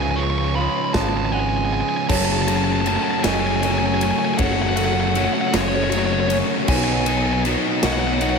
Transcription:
Already playing: C#2 C#3 F3 G#3 C#4 B4 C#5 E5
0.02 G#5
0.11 G#5
0.16 C#3 F3 G#3 C#4 C#6
0.23 C#6
0.30 C#6
0.38 C#6
0.45 C#6
0.55 C#3 F3 G#3 C#4 F5 B5
0.62 B5
0.70 B5
0.77 B5
0.84 B5
0.93 G#1 C#3 F3 G#3 B3 C#4 A5, kick, snare
1.01 A5
1.09 A5
1.17 A5
1.25 A5
1.33 G#3 F#5 G#5
1.40 G#5
1.49 G#5
1.57 G#5
1.65 G#5
1.70 C#3 F3 G#3 C#4 G#5
1.81 G#5
1.89 G#5
1.97 G#5
2.08 F#1 F#2 C#3 F#3 A3 C#4 F#4 A4 C#5 A5, kick, crash
2.16 A5
2.25 A5
2.32 A5
2.42 A5
2.47 F#3 A3 C#4 F#4 A5, ride
2.56 A5
2.64 A5
2.73 A5
2.81 C#3 A5
2.85 F#3 A3 C#4 F#4 A5, ride
2.96 A5
3.03 A5
3.11 A5
3.20 A3 C#4 F#4 G#5 A5
3.24 F#1 F#2 C#3 F#3 D#5, snare, ride
3.32 G#5
3.39 G#5
3.47 G#5
3.56 G#5
3.61 C#3 F#3 A3 C#4 F#4 C#5 G#5, ride
3.71 G#5
3.79 G#5
3.86 G#5
3.94 G#5
4.01 C#4 G#5, ride
4.11 G#5
4.19 G#5
4.25 G#5
4.34 F#2 F#5 G#5
4.38 F#1 C#3 F#3 A3 C#4 F#4, kick, ride
4.46 F#5
4.53 F#5
4.62 F#5
4.69 F#5
4.76 F#3 A3 C#4 F#4 A4 F#5, ride
4.85 F#5
4.93 F#5
5.00 F#5
5.08 F#5
5.15 C#3 F#3 A3 C#4 F#4 F#5, ride
5.25 F#5
5.33 F#5
5.41 F#5
5.48 F#5
5.53 F#1 F#2 C#3 F#3 A3 C#4 F#4 C#5, snare, ride
5.61 C#5
5.69 C#5
5.75 C#5
5.84 C#5
5.90 C#3 F#3 A3 C#4 F#4 C#5, ride
5.98 C#5
6.06 C#5
6.13 C#5
6.20 C#5
6.28 C#4 C#5, ride
6.68 B1 B2 F#3 B3 D#4 F#4 C#5 G#5, kick, crash
6.76 G#5
6.84 G#5
6.93 G#5
7.01 G#5
7.05 F#3 B3 D#4 F#4, ride
7.09 G#5
7.17 G#5
7.26 G#5
7.33 G#5
7.44 B2 D#3 F#3 B3 D#4 F#4, ride
7.82 B1 B2 F#3 B3 C#4 D#4 F#4 D#5 F#5, snare, ride
7.93 F#5
8.00 F#5
8.07 F#5
8.14 F#5
8.20 B2 D#3 F#3 B3 D#4 F#4 C#5 F#5, ride
8.29 F#5

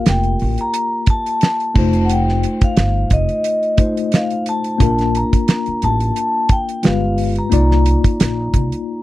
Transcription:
Already playing: A#3 F4 G4 A#4
0.06 F1 G5, snare, closed hi-hat
0.23 closed hi-hat
0.39 A1, open hi-hat
0.58 A#5, closed hi-hat
0.74 closed hi-hat
1.06 A5, kick, closed hi-hat
1.26 closed hi-hat
1.41 snare, closed hi-hat
1.60 closed hi-hat
1.74 F1 A3 D#4 F4, kick, crash
1.79 C5
1.93 closed hi-hat
2.05 F#5
2.09 G5, closed hi-hat
2.29 snare
2.43 closed hi-hat
2.61 F5, kick, closed hi-hat
2.77 G1, snare, closed hi-hat
3.10 F1 D#5, kick, closed hi-hat
3.29 closed hi-hat
3.44 closed hi-hat
3.63 closed hi-hat
3.77 A3 D#4 F4 C5, kick, closed hi-hat
3.97 closed hi-hat
4.12 F5, snare, closed hi-hat
4.30 closed hi-hat
4.46 A5, closed hi-hat
4.64 closed hi-hat
4.78 A#1 A#3 D4 F4, kick, closed hi-hat
4.82 A#4
4.99 snare, closed hi-hat
5.15 A#5, closed hi-hat
5.33 kick, closed hi-hat
5.48 snare, closed hi-hat
5.66 muted upright bass stroke, closed hi-hat
5.82 A1 A5, closed hi-hat
6.00 closed hi-hat
6.16 closed hi-hat
6.49 G5, kick, closed hi-hat
6.69 closed hi-hat
6.83 G1 G#3 F4 G4 B4 F5, snare, closed hi-hat
7.18 open hi-hat
7.36 A#5, closed hi-hat
7.50 C2 A#3 D#4 F4, closed hi-hat
7.54 D5
7.71 snare
7.86 closed hi-hat
8.04 kick, closed hi-hat
8.20 A#1, snare, closed hi-hat
8.54 C2, kick, closed hi-hat
8.72 closed hi-hat

